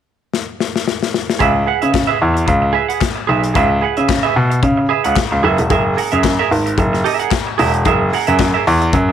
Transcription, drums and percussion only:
0.33 snare medium
0.60 snare medium
0.76 snare medium
0.88 snare medium
1.03 snare medium
1.14 snare medium
1.30 snare loud
1.40 kick medium
1.40 closed hi-hat medium
1.82 closed hi-hat soft
1.94 kick loud
1.94 snare medium
1.94 clap medium
1.94 closed hi-hat soft
2.37 closed hi-hat soft
2.48 kick loud
2.48 closed hi-hat soft
2.90 closed hi-hat soft
3.01 kick loud
3.01 snare loud
3.01 clap medium
3.01 closed hi-hat medium
3.44 closed hi-hat soft
3.55 kick loud
3.55 closed hi-hat medium
3.97 closed hi-hat soft
4.09 kick loud
4.09 snare medium
4.09 clap medium
4.09 closed hi-hat soft
4.52 closed hi-hat soft
4.63 kick medium
4.63 closed hi-hat medium
5.05 closed hi-hat soft
5.16 kick loud
5.16 snare loud
5.16 clap medium
5.16 closed hi-hat medium
5.58 closed hi-hat soft
5.70 kick loud
5.70 closed hi-hat medium
5.98 open hi-hat medium
6.12 closed hi-hat soft
6.23 kick medium
6.23 snare loud
6.23 clap medium
6.23 closed hi-hat medium
6.52 open hi-hat medium
6.67 closed hi-hat soft
6.78 kick medium
6.78 closed hi-hat medium
6.94 snare soft
7.05 open hi-hat medium
7.20 closed hi-hat soft
7.31 kick loud
7.31 snare loud
7.31 clap medium
7.31 closed hi-hat medium
7.59 open hi-hat medium
7.74 closed hi-hat soft
7.85 kick medium
7.85 closed hi-hat medium
8.13 open hi-hat medium
8.27 closed hi-hat soft
8.39 kick loud
8.39 snare loud
8.39 clap medium
8.39 closed hi-hat medium
8.67 open hi-hat medium
8.82 closed hi-hat soft
8.93 kick loud
8.93 closed hi-hat medium

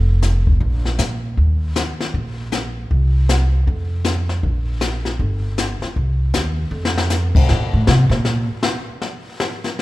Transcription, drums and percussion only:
0.22 snare soft
0.22 hi-hat pedal soft
0.47 kick soft
0.61 brush sweep soft
0.61 kick soft
0.85 snare soft
0.99 snare soft
0.99 hi-hat pedal soft
1.37 brush sweep soft
1.37 kick soft
1.76 snare soft
1.76 hi-hat pedal soft
2.00 snare soft
2.14 brush sweep soft
2.14 kick soft
2.52 snare soft
2.52 hi-hat pedal soft
2.91 brush sweep soft
2.91 kick soft
3.29 snare soft
3.29 hi-hat pedal soft
3.67 brush sweep soft
3.67 kick soft
4.04 snare soft
4.04 hi-hat pedal medium
4.29 snare soft
4.43 brush sweep soft
4.43 kick soft
4.81 snare soft
4.81 hi-hat pedal soft
5.05 snare soft
5.19 brush sweep soft
5.19 kick soft
5.58 snare soft
5.58 hi-hat pedal medium
5.82 snare soft
5.96 brush sweep soft
5.96 kick soft
6.34 snare soft
6.34 hi-hat pedal medium
6.85 snare soft
6.98 snare medium
7.10 snare soft
7.10 hi-hat pedal medium
7.35 kick medium
7.35 crash medium
7.49 brush sweep soft
7.49 snare soft
7.87 snare medium
8.11 snare soft
8.25 brush sweep soft
8.25 snare soft
8.63 snare medium
9.02 brush sweep soft
9.02 snare soft
9.40 snare medium
9.64 snare soft
9.79 brush sweep soft
9.79 snare soft

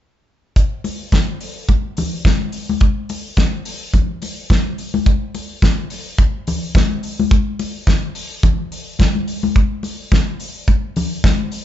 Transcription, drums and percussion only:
0.56 kick loud
0.56 closed hi-hat medium
0.84 open hi-hat medium
0.84 muted conga soft
1.12 kick medium
1.12 snare loud
1.12 closed hi-hat medium
1.12 high conga medium
1.41 open hi-hat medium
1.69 kick medium
1.69 closed hi-hat soft
1.69 muted conga medium
1.97 open hi-hat medium
1.97 muted conga soft
1.97 low conga medium
2.25 kick loud
2.25 snare loud
2.25 closed hi-hat medium
2.25 high conga medium
2.52 open hi-hat medium
2.69 high conga medium
2.81 kick loud
2.81 closed hi-hat medium
3.09 open hi-hat medium
3.09 muted conga soft
3.37 kick medium
3.37 snare loud
3.37 closed hi-hat medium
3.37 high conga medium
3.65 open hi-hat medium
3.94 kick medium
3.94 closed hi-hat soft
3.94 muted conga soft
3.94 low conga medium
4.22 open hi-hat medium
4.22 muted conga soft
4.50 kick loud
4.50 snare loud
4.50 closed hi-hat medium
4.50 high conga medium
4.78 open hi-hat medium
4.94 high conga medium
5.06 kick loud
5.06 closed hi-hat medium
5.35 open hi-hat medium
5.35 muted conga soft
5.62 kick medium
5.62 snare loud
5.62 closed hi-hat medium
5.62 high conga medium
5.90 open hi-hat medium
6.18 kick loud
6.18 closed hi-hat soft
6.18 muted conga soft
6.47 open hi-hat medium
6.47 low conga medium
6.75 kick loud
6.75 snare loud
6.75 closed hi-hat medium
6.75 high conga medium
7.03 open hi-hat medium
7.20 high conga medium
7.31 kick loud
7.31 closed hi-hat medium
7.59 open hi-hat medium
7.59 muted conga soft
7.87 kick loud
7.87 snare loud
7.87 closed hi-hat medium
7.87 high conga medium
8.15 open hi-hat medium
8.43 kick loud
8.43 closed hi-hat medium
8.43 muted conga medium
8.43 low conga medium
8.72 open hi-hat medium
8.99 kick loud
8.99 snare loud
8.99 closed hi-hat medium
8.99 high conga medium
9.15 high conga soft
9.28 open hi-hat medium
9.43 high conga medium
9.56 kick loud
9.56 closed hi-hat medium
9.83 open hi-hat medium
9.83 muted conga soft
10.12 kick loud
10.12 snare medium
10.12 closed hi-hat medium
10.12 high conga medium
10.40 open hi-hat medium
10.68 kick medium
10.68 closed hi-hat soft
10.68 muted conga soft
10.96 open hi-hat medium
10.96 low conga medium
11.24 kick loud
11.24 snare loud
11.24 closed hi-hat medium
11.24 high conga medium
11.52 open hi-hat medium

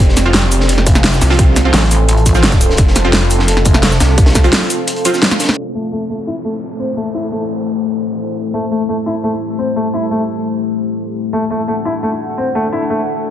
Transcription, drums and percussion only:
0.09 snare soft
0.17 snare soft
0.17 closed hi-hat medium
0.17 shaker medium
0.33 snare loud
0.33 closed hi-hat medium
0.51 closed hi-hat medium
0.51 open hi-hat medium
0.51 shaker medium
0.60 snare soft
0.69 closed hi-hat medium
0.78 snare soft
0.87 kick loud
0.87 closed hi-hat medium
0.87 shaker medium
0.95 snare medium
0.95 shaker soft
1.04 snare loud
1.04 closed hi-hat medium
1.12 snare medium
1.12 shaker soft
1.21 snare soft
1.21 open hi-hat medium
1.21 shaker medium
1.30 snare soft
1.39 kick loud
1.39 closed hi-hat medium
1.56 snare soft
1.56 closed hi-hat medium
1.56 shaker medium
1.74 snare loud
1.74 closed hi-hat medium
1.82 snare soft
1.91 closed hi-hat medium
1.91 open hi-hat medium
1.91 shaker medium
2.08 closed hi-hat medium
2.17 closed hi-hat soft
2.26 kick medium
2.26 closed hi-hat medium
2.26 shaker medium
2.35 snare soft
2.35 shaker soft
2.43 snare loud
2.43 closed hi-hat medium
2.52 kick loud
2.52 snare soft
2.52 shaker soft
2.61 closed hi-hat medium
2.61 open hi-hat medium
2.61 shaker medium
2.70 snare soft
2.77 kick loud
2.77 closed hi-hat medium
2.87 snare soft
2.95 snare soft
2.95 closed hi-hat medium
2.95 shaker medium
3.13 snare loud
3.13 closed hi-hat medium
3.31 closed hi-hat medium
3.31 open hi-hat medium
3.31 shaker medium
3.39 snare soft
3.48 closed hi-hat medium
3.48 closed hi-hat loud
3.57 snare soft
3.65 kick loud
3.65 closed hi-hat medium
3.65 closed hi-hat loud
3.65 shaker medium
3.74 snare medium
3.74 shaker soft
3.83 snare loud
3.83 closed hi-hat medium
3.91 snare medium
3.91 shaker soft
4.00 snare loud
4.00 snare soft
4.00 closed hi-hat medium
4.00 open hi-hat medium
4.00 shaker medium
4.18 kick loud
4.18 closed hi-hat medium
4.26 snare loud
4.26 closed hi-hat medium
4.35 kick medium
4.35 snare soft
4.35 closed hi-hat medium
4.35 shaker medium
4.44 closed hi-hat medium
4.52 snare loud
4.52 closed hi-hat medium
4.61 snare soft
4.70 closed hi-hat medium
4.70 open hi-hat medium
4.70 shaker medium
4.87 closed hi-hat medium
4.96 closed hi-hat soft
5.05 closed hi-hat loud
5.05 closed hi-hat medium
5.05 shaker medium
5.14 snare soft
5.14 shaker soft
5.22 snare loud
5.22 closed hi-hat medium
5.31 snare medium
5.31 shaker soft
5.40 snare medium
5.40 closed hi-hat medium
5.40 open hi-hat medium
5.40 shaker medium
5.44 snare medium
5.44 closed hi-hat medium
5.49 snare medium
5.49 closed hi-hat medium
5.53 snare medium
5.53 closed hi-hat medium

